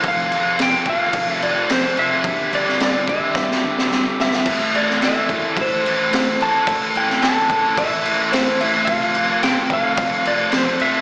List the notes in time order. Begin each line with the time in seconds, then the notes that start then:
0.01 F4 A4 C5, kick, crash
0.05 F2 C3 F3 F5
0.32 F2 C3 F3, crash
0.59 F2 C3 F3 G5, snare, crash
0.86 F2 C3 F3 F5, kick, crash
1.13 F2 C3 F3, kick, crash
1.29 E5
1.41 F2 C3 F3 D5, crash
1.69 F2 C3 F3 C5, snare, crash
1.97 F2 C3 F3 E5, crash
2.23 G2 D3 G3 D4 G4 B4, kick, crash
2.52 G2 D3 G3 D5, crash
2.68 snare
2.80 G2 D3 G3 D5, snare, crash
3.08 G2 D3 G3 E5, kick, crash
3.35 G2 D3 G3, kick, snare
3.51 snare
3.63 G2 D3 G3
3.78 snare
3.91 G2 D3 G3, snare
4.19 G2 D3 G3 E5, snare
4.33 snare
4.46 A2 E3 A3 E4 A4 C5, kick, crash
4.75 A2 E3 A3 D5, crash
4.90 snare
5.01 A2 E3 A3, snare, crash
5.05 E5
5.29 A2 E3 A3, kick, crash
5.57 A2 E3 A3, kick, crash
5.61 C5
5.83 A2 E3 A3, crash
6.11 A2 E3 A3, snare, crash
6.37 A2 E3 A3, crash
6.42 A5
6.66 A2 E3 A3, kick, crash
6.95 A2 E3 A3 G5, crash
7.09 snare
7.22 A2 E3 A3 A5, snare, crash
7.49 A2 E3 A3, kick, crash
7.77 A2 E3 A3 E5, kick, crash
8.05 A2 E3 A3, crash
8.32 A2 E3 A3 C5, snare, crash
8.61 A2 E3 A3 E5, crash
8.85 F5, kick, crash
8.89 F2 C3 F3 F4 A4 C5
9.15 F2 C3 F3, crash
9.43 F2 C3 F3 G5, snare, crash
9.70 F2 C3 F3 F5, kick, crash
9.97 F2 C3 F3, kick, crash
10.25 F2 C3 F3 D5, crash
10.52 F2 C3 F3, snare, crash
10.57 C5
10.79 F2 C3 F3 E5, crash